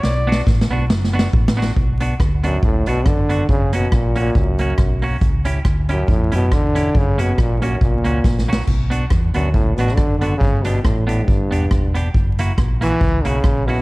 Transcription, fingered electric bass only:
X:1
M:4/4
L:1/8
Q:"Swing" 1/4=139
K:Bm
V:1 name="Fingered electric bass" clef=bass
B,,,2 A,,, B,,, F,,,2 A,,,2 | B,,,2 D,,2 C,, B,,, F,,,2 | F,,,2 ^A,,,2 C,,2 B,,,2 | C,,2 D,,2 E,, F,, z2 |
F,,,2 ^A,,,2 B,,, C,, A,,,2 | B,,,2 E,, D,, C,, A,,, z2 | G,,,2 A,,,2 G,,, E,,, E,,,2 | F,,,2 ^A,,,2 C,, B,,, A,,,2 |]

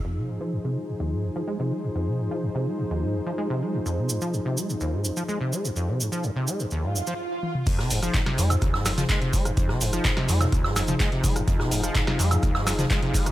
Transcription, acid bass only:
X:1
M:4/4
L:1/16
Q:1/4=126
K:Fm
V:1 name="Acid bass" clef=bass
F,, C, A,, F, F,, C, A, F,, E,, A,, F,, F, A, C, A, F,, | F,, C, A,, F, F,, C, A, F,, E,, A,, F,, F, A, C, A, F,, | F,, C, A,, F, F,, C, A, F,, E,, A,, F,, F, A, C, A, F,, | F,, C, A,, F, F,, C, A, F,, E,, A,, F,, F, z4 |
F,, C, A,, F, F,, C, A, F,, E,, A,, F,, F, A, C, A, F,, | F,, C, A,, F, F,, C, A, F,, E,, A,, F,, F, A, C, A, F,, | F,, C, A,, F, F,, C, A, F,, E,, A,, F,, F, A, C, A, F,, |]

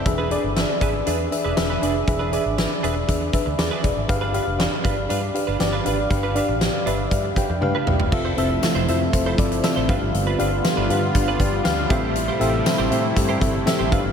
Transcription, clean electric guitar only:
X:1
M:4/4
L:1/16
Q:1/4=119
K:Gmix
V:1 name="Clean electric guitar"
z [D^GB] [DGB] z3 [DGB]2 [DGB]2 z [DGB] z [DGB] [DGB] z | z [D^GB] [DGB] z3 [DGB]2 z4 z [DGB]2 z | z [DFB] [DFB] z3 [DFB]2 [DFB]2 z [DFB] z [DFB] [DFB] z | z [DFB] [DFB] z3 [DFB]2 z4 z [DFB]2 z |
z [EAc] [EAc] z2 [EAc] [EAc] z2 [EAc]2 z2 [EAc] [DFB]2 | z [DFB] [DFB] z2 [DFB] [DFB] z2 [DFB]2 z3 [EGc] [EGc] | z [EGc] [EGc] z2 [EGc] [EGc] z2 [EGc]2 z2 [EGc] [DFB]2 |]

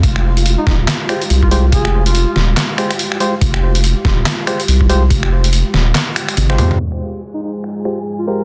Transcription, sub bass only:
X:1
M:4/4
L:1/8
Q:"Swing 16ths" 1/4=142
K:Fm
V:1 name="Sub bass" clef=bass
F,,,2 z E,,, z2 C,,2 | F,,,2 z E,,, z4 | F,,,2 z E,,, z2 C,,2 | F,,,2 z E,,, z2 A,,, F,, |
z8 |]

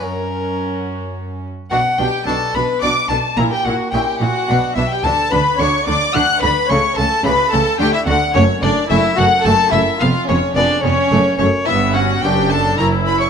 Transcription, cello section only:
X:1
M:3/4
L:1/8
Q:1/4=108
K:Bm
V:1 name="Cello section" clef=bass
F,,4- F,, z | B,, B,, B,, B,, B,, B,, | ^A,, A,, A,, A,, B,, B,, | D, D, D, D, D, D, |
C, C, C, C, D, D, | F,, F,, F,, F,, F,, F,, | ^E,, E,, E,, E,, F,, F,, | G,,2 F,,2 F,,2 |]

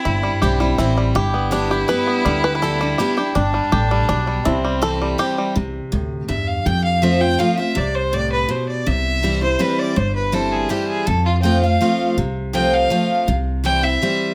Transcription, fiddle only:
X:1
M:3/4
L:1/8
Q:1/4=163
K:C
V:1 name="Fiddle"
E4- E z | E6- | E6 | D6 |
C4- C z | z4 e f | g f e g f e | d c d B c d |
e3 c B d | c B A _A G A | A F g f3 | z2 g f3 |
z2 g e3 |]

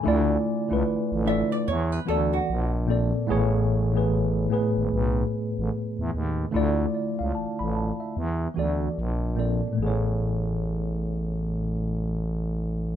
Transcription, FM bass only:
X:1
M:4/4
L:1/16
Q:"Swing 16ths" 1/4=74
K:A
V:1 name="FM bass" clef=bass
D,,2 z C,, A,,, A,,,2 z E,,2 D,,2 _B,,,4 | A,,,6 G,,, G,,, B,,,2 z A,,, z E,, ^D,,2 | D,,2 z C,, A,,, A,,,2 z E,,2 D,,2 _B,,,4 | A,,,16 |]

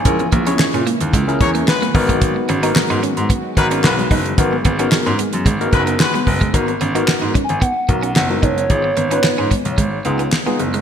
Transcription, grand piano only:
X:1
M:4/4
L:1/16
Q:1/4=111
K:G#m
V:1 name="Grand piano" clef=bass
A,,,2 A,,,2 A,, A,, z D,, C,,2 E,,2 z2 G,,,2- | G,,,2 G,,,2 G,, G,, z G,, z2 G,,,2 B,,,2 F,,,2 | G,,,2 G,,,2 z G,, z F,, G,,,2 F,,,2 z2 F,,,2 | G,,,2 G,,,2 G,, G,, z G,,, z2 B,,,2 F,,,2 F,,,2 |
G,,,2 G,,,2 G,, G,, z B,,, G,,,2 C,,2 z2 F,,,2 |]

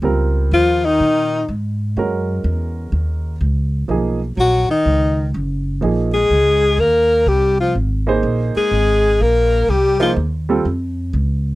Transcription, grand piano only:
X:1
M:4/4
L:1/8
Q:"Swing" 1/4=124
K:Ab
V:1 name="Grand piano"
[G,CFB]4- [G,CFB] z3 | [A,D_GB]4- [A,DGB] z3 | [F,^A,^D_A] z6 z | [F,B,EA] z6 z |
z [B,EAc]3 z4 | z [B,EAc] z [G,CF=A] z4 |]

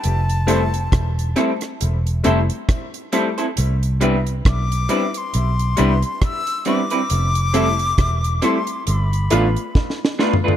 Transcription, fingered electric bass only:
X:1
M:4/4
L:1/16
Q:"Swing 16ths" 1/4=68
K:C
V:1 name="Fingered electric bass" clef=bass
F,,,4 E,,,2 z2 E,,,2 F,,, z4 z | C,,4 B,,,2 z2 B,,,2 C,, z4 z | F,,,4 E,,,2 z2 G,,,2 A,,, z4 z |]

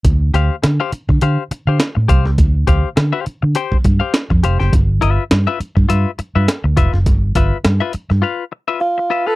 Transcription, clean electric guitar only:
X:1
M:4/4
L:1/16
Q:"Swing 16ths" 1/4=103
K:Ddor
V:1 name="Clean electric guitar"
z2 [Gcf] z2 [Gcf] z2 [Gcf] z2 [Gcf] z2 [Gcf] z | z2 [Gcf] z2 [Gcf] z2 [Gcg] z2 [Gcf] z2 [Gcf] [Gcg] | z2 [FBe] z2 [FBe] z2 [FBe] z2 [FBe] z2 [FBe] z | z2 [FBe] z2 [FBe] z2 [FBf] z2 [FBe] z2 [FBe] [FBf] |]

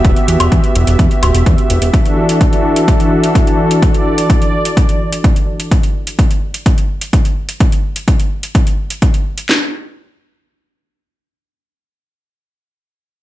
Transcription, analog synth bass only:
X:1
M:4/4
L:1/16
Q:1/4=127
K:Dmix
V:1 name="Analog synth bass" clef=bass
E,,, z E,, E,,, E,, z E,,, E,,, E,, z D,,, E,,, E,, z E,,, E,,, | z16 | z16 | z16 |
z16 | z16 | z16 |]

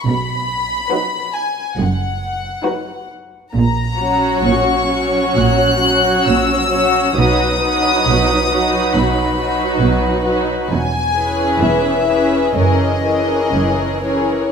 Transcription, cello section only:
X:1
M:4/4
L:1/8
Q:1/4=67
K:B
V:1 name="Cello section" clef=bass
B,,2 z2 F,,2 z2 | A,,2 A,,2 A,,2 A,,2 | B,,2 B,,2 B,,2 B,,2 | E,,2 E,,2 F,,2 F,,2 |]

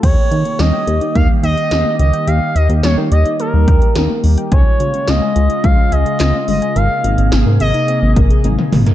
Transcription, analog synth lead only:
X:1
M:4/4
L:1/8
Q:1/4=107
K:Ebmix
V:1 name="Analog synth lead"
d2 e2 f e2 e | f e d e B3 z | d2 e2 f e2 e | f2 z e2 z3 |]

